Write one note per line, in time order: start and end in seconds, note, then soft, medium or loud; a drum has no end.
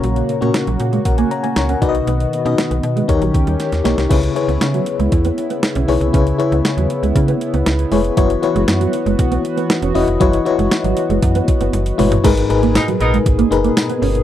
0.00 0.23 A#1 loud
0.00 0.51 A#2 medium
0.00 1.80 C#3 medium
0.00 0.11 F#3 medium
0.00 1.80 A#3 medium
0.00 0.32 C#4 medium
0.00 0.32 F#4 medium
0.00 3.06 F#4 medium
0.00 0.32 A#4 medium
0.00 0.33 C#5 medium
0.00 1.31 A#5 medium
0.00 closed hi-hat medium
0.16 closed hi-hat medium
0.29 muted clean electric guitar stroke soft
0.29 closed hi-hat medium
0.41 0.52 A#2 medium
0.41 0.49 A#3 medium
0.41 1.28 C#4 medium
0.41 1.28 F#4 medium
0.41 1.05 A#4 medium
0.41 1.06 C#5 medium
0.41 closed hi-hat soft
0.54 snare loud
0.54 closed hi-hat medium
0.67 0.77 A#1 medium
0.67 0.75 F#3 medium
0.67 closed hi-hat soft
0.80 0.99 A#2 medium
0.80 muted clean electric guitar stroke soft
0.80 closed hi-hat medium
0.93 1.00 G#3 medium
0.93 closed hi-hat soft
1.05 1.25 A#1 medium
1.05 1.18 A#4 medium
1.05 1.17 F#5 medium
1.05 kick medium
1.05 closed hi-hat medium
1.18 1.25 A#3 medium
1.18 1.30 G#5 medium
1.18 closed hi-hat soft
1.31 1.43 C#5 medium
1.31 1.43 A#5 medium
1.31 muted clean electric guitar stroke soft
1.31 closed hi-hat medium
1.43 1.51 A#3 medium
1.43 1.56 G#5 medium
1.43 closed hi-hat soft
1.56 1.75 C#2 loud
1.56 1.69 C#5 medium
1.56 1.69 A#5 medium
1.56 muted clean electric guitar stroke soft
1.56 snare loud
1.56 closed hi-hat medium
1.69 1.77 C#4 medium
1.69 1.94 A#4 soft
1.69 1.93 F#5 medium
1.69 closed hi-hat medium
1.82 2.01 B1 loud
1.82 2.54 B2 medium
1.82 4.08 D#3 medium
1.82 3.08 B3 medium
1.82 2.36 D#4 medium
1.82 1.89 D#4 medium
1.82 2.36 F#4 medium
1.82 2.36 B4 medium
1.82 1.88 D5 medium
1.82 kick medium
1.82 closed hi-hat medium
1.89 2.39 D#5 medium
1.95 closed hi-hat soft
2.07 2.26 B1 loud
2.07 2.15 B3 medium
2.07 closed hi-hat medium
2.20 closed hi-hat soft
2.33 muted clean electric guitar stroke soft
2.33 closed hi-hat medium
2.45 2.55 B2 loud
2.45 2.53 C#4 medium
2.45 3.07 D#4 medium
2.45 3.09 F#4 medium
2.45 3.09 B4 medium
2.45 3.09 D#5 medium
2.45 closed hi-hat soft
2.58 snare loud
2.58 closed hi-hat medium
2.71 2.80 B1 medium
2.71 2.78 B3 medium
2.71 closed hi-hat soft
2.83 3.02 B2 medium
2.83 muted clean electric guitar stroke soft
2.83 closed hi-hat medium
2.96 3.04 G#3 medium
2.96 closed hi-hat soft
3.08 3.18 D#2 loud
3.08 3.81 D#3 medium
3.08 4.10 C#4 medium
3.08 3.73 D#4 medium
3.08 3.74 G4 medium
3.08 4.10 G4 medium
3.08 3.74 A#4 medium
3.08 3.74 C#5 medium
3.08 kick medium
3.08 closed hi-hat medium
3.22 3.31 A#1 medium
3.22 3.29 F#3 medium
3.22 closed hi-hat soft
3.34 3.44 C#2 medium
3.34 muted clean electric guitar stroke soft
3.34 kick medium
3.34 closed hi-hat medium
3.47 3.57 D#2 medium
3.47 3.54 G3 medium
3.47 closed hi-hat soft
3.60 snare soft
3.60 closed hi-hat medium
3.72 3.82 D#2 medium
3.72 snare soft
3.72 closed hi-hat medium
3.84 3.95 B1 medium
3.84 3.92 A#3 medium
3.84 4.06 D#4 medium
3.84 4.07 G4 medium
3.84 4.07 A#4 medium
3.84 4.07 C#5 medium
3.84 snare medium
3.84 closed hi-hat medium
3.98 4.07 C2 medium
3.98 snare medium
3.98 closed hi-hat soft
4.09 4.30 C#2 loud
4.09 4.83 C#3 medium
4.09 8.13 C#3 medium
4.09 12.20 B3 medium
4.09 4.18 C#4 medium
4.09 4.32 E4 medium
4.09 8.13 E4 medium
4.09 4.32 G#4 medium
4.09 4.32 B4 medium
4.09 4.32 C#5 medium
4.09 kick loud
4.09 closed hi-hat medium
4.09 crash medium
4.23 closed hi-hat medium
4.35 5.22 E4 medium
4.35 5.22 G#4 medium
4.35 5.23 B4 medium
4.35 5.23 C#5 medium
4.35 muted clean electric guitar stroke soft
4.35 closed hi-hat medium
4.48 4.58 C#2 loud
4.48 4.56 B3 medium
4.48 closed hi-hat soft
4.61 4.80 C#3 loud
4.61 snare loud
4.61 closed hi-hat medium
4.74 4.81 F#3 medium
4.74 closed hi-hat soft
4.86 muted clean electric guitar stroke soft
4.86 closed hi-hat medium
4.99 5.09 C#2 medium
4.99 5.07 G#3 medium
4.99 closed hi-hat soft
5.12 5.31 E2 medium
5.12 kick medium
5.12 closed hi-hat medium
5.25 5.32 B3 medium
5.25 closed hi-hat soft
5.38 muted clean electric guitar stroke soft
5.38 closed hi-hat medium
5.50 5.58 B3 medium
5.50 closed hi-hat soft
5.63 muted clean electric guitar stroke soft
5.63 snare loud
5.63 closed hi-hat medium
5.75 5.85 B1 loud
5.75 5.83 C#4 medium
5.75 closed hi-hat medium
5.88 5.98 B1 loud
5.88 5.96 D#4 medium
5.88 6.10 E4 medium
5.88 6.10 G#4 medium
5.88 6.10 B4 medium
5.88 6.11 C#5 medium
5.88 open hi-hat medium
6.01 6.10 C2 medium
6.01 closed hi-hat soft
6.13 6.33 C#2 loud
6.13 6.86 C#3 medium
6.13 6.21 C#4 medium
6.13 6.35 E4 medium
6.13 6.35 G#4 medium
6.13 6.36 B4 medium
6.13 6.36 C#5 medium
6.13 kick loud
6.13 closed hi-hat medium
6.27 closed hi-hat medium
6.38 7.26 E4 medium
6.38 7.26 G#4 medium
6.38 7.26 B4 medium
6.38 7.26 C#5 medium
6.38 muted clean electric guitar stroke soft
6.38 closed hi-hat medium
6.52 6.62 C#2 loud
6.52 6.60 B3 medium
6.52 closed hi-hat soft
6.65 snare loud
6.65 closed hi-hat medium
6.77 6.87 D#2 medium
6.77 6.85 F#3 medium
6.77 closed hi-hat medium
6.90 muted clean electric guitar stroke soft
6.90 closed hi-hat medium
7.03 7.12 C#2 medium
7.03 7.10 G#3 medium
7.03 closed hi-hat soft
7.16 7.35 C#3 loud
7.16 kick medium
7.16 closed hi-hat medium
7.28 7.36 B3 medium
7.28 closed hi-hat soft
7.41 muted clean electric guitar stroke soft
7.41 closed hi-hat medium
7.54 7.63 C#2 medium
7.54 7.61 B3 medium
7.54 closed hi-hat soft
7.66 7.86 C#2 loud
7.66 snare loud
7.66 closed hi-hat medium
7.79 closed hi-hat medium
7.92 8.11 F1 medium
7.92 7.99 G#3 medium
7.92 8.13 E4 medium
7.92 8.14 G#4 medium
7.92 8.14 B4 medium
7.92 8.14 C#5 medium
7.92 open hi-hat medium
8.05 closed hi-hat soft
8.17 8.36 F#1 loud
8.17 12.20 E3 medium
8.17 8.25 F#3 medium
8.17 8.39 E4 medium
8.17 12.20 F#4 medium
8.17 8.39 F#4 medium
8.17 8.39 B4 medium
8.17 8.39 C#5 medium
8.17 kick loud
8.17 closed hi-hat medium
8.30 closed hi-hat medium
8.42 9.29 E4 medium
8.42 9.29 F#4 medium
8.42 9.30 B4 medium
8.42 9.30 C#5 medium
8.42 muted clean electric guitar stroke soft
8.42 closed hi-hat medium
8.55 8.65 F#1 loud
8.55 8.63 G#3 medium
8.55 closed hi-hat soft
8.68 8.87 F#2 loud
8.68 snare loud
8.68 closed hi-hat medium
8.81 8.88 F#3 medium
8.81 closed hi-hat medium
8.93 muted clean electric guitar stroke soft
8.93 closed hi-hat medium
9.06 9.16 F#1 medium
9.06 9.14 G#3 medium
9.06 closed hi-hat soft
9.19 9.38 B1 loud
9.19 kick medium
9.19 closed hi-hat medium
9.31 9.39 B3 medium
9.31 closed hi-hat soft
9.44 muted clean electric guitar stroke soft
9.44 closed hi-hat medium
9.57 9.64 B3 medium
9.57 closed hi-hat soft
9.70 muted clean electric guitar stroke soft
9.70 snare loud
9.70 closed hi-hat medium
9.82 9.92 E1 medium
9.82 9.90 C#4 medium
9.82 closed hi-hat medium
9.94 10.05 E1 medium
9.94 10.03 C#4 medium
9.94 10.17 E4 medium
9.94 10.17 F#4 medium
9.94 10.17 B4 medium
9.94 10.17 D#5 medium
9.94 open hi-hat medium
10.08 10.17 F1 medium
10.08 closed hi-hat soft
10.20 10.40 F#1 loud
10.20 10.28 F#3 medium
10.20 10.42 E4 medium
10.20 10.42 F#4 medium
10.20 10.42 B4 medium
10.20 10.43 C#5 loud
10.20 kick loud
10.20 closed hi-hat medium
10.33 closed hi-hat medium
10.45 11.32 E4 medium
10.45 11.33 F#4 medium
10.45 11.33 B4 medium
10.45 11.33 C#5 medium
10.45 muted clean electric guitar stroke soft
10.45 closed hi-hat medium
10.59 10.68 F#1 medium
10.59 10.66 G#3 medium
10.59 closed hi-hat soft
10.71 snare loud
10.71 closed hi-hat medium
10.84 10.94 G#1 medium
10.84 10.92 F#3 medium
10.84 closed hi-hat medium
10.97 muted clean electric guitar stroke soft
10.97 closed hi-hat medium
11.10 11.19 F#1 medium
11.10 11.17 G#3 medium
11.10 closed hi-hat soft
11.22 11.42 F#2 loud
11.22 kick medium
11.22 closed hi-hat medium
11.35 11.43 B3 medium
11.35 closed hi-hat soft
11.48 muted clean electric guitar stroke soft
11.48 kick medium
11.48 closed hi-hat medium
11.60 11.70 F#1 medium
11.60 11.68 B3 medium
11.60 closed hi-hat soft
11.73 11.92 F#1 loud
11.73 closed hi-hat medium
11.73 high tom medium
11.86 closed hi-hat medium
11.98 12.18 G1 medium
11.98 12.06 G#3 medium
11.98 12.20 E4 medium
11.98 12.20 F#4 medium
11.98 12.21 B4 medium
11.98 12.21 C#5 medium
11.98 mid tom medium
11.98 open hi-hat medium
12.12 closed hi-hat soft
12.12 floor tom medium
12.24 12.43 G#1 loud
12.24 12.96 G#2 medium
12.24 14.23 A#2 medium
12.24 14.23 B2 medium
12.24 12.32 G#3 medium
12.24 12.46 D#4 medium
12.24 12.46 G#4 medium
12.24 14.23 G#4 medium
12.24 12.46 A#4 medium
12.24 12.46 B4 loud
12.24 kick loud
12.24 closed hi-hat medium
12.24 crash medium
12.37 closed hi-hat medium
12.49 12.78 G#1 loud
12.49 13.36 D#4 medium
12.49 13.36 G#4 medium
12.49 13.36 A#4 medium
12.49 13.37 B4 medium
12.49 muted clean electric guitar stroke soft
12.49 closed hi-hat medium
12.62 12.70 A#3 medium
12.62 closed hi-hat soft
12.75 12.86 B3 medium
12.75 12.86 D#4 medium
12.75 12.86 A#4 medium
12.75 snare loud
12.75 closed hi-hat medium
12.75 tambourine medium
12.88 12.95 F#3 medium
12.88 closed hi-hat medium
13.00 13.19 A#1 medium
13.00 13.17 B3 medium
13.00 13.17 D#4 medium
13.00 13.17 A#4 medium
13.00 muted clean electric guitar stroke soft
13.00 closed hi-hat medium
13.13 13.21 G#3 medium
13.13 closed hi-hat soft
13.26 13.45 G#1 loud
13.26 kick medium
13.26 closed hi-hat medium
13.39 13.46 A#3 medium
13.39 closed hi-hat soft
13.51 13.70 F#1 medium
13.51 14.16 D#4 medium
13.51 14.16 G#4 medium
13.51 14.16 A#4 medium
13.51 14.17 B4 medium
13.51 muted clean electric guitar stroke soft
13.51 closed hi-hat medium
13.64 13.71 A#3 medium
13.64 closed hi-hat soft
13.77 muted clean electric guitar stroke soft
13.77 snare loud
13.77 closed hi-hat medium
13.77 tambourine medium
13.90 13.97 B3 medium
13.90 closed hi-hat medium
14.02 14.21 G1 medium
14.02 14.09 C#4 medium
14.02 open hi-hat medium
14.15 closed hi-hat soft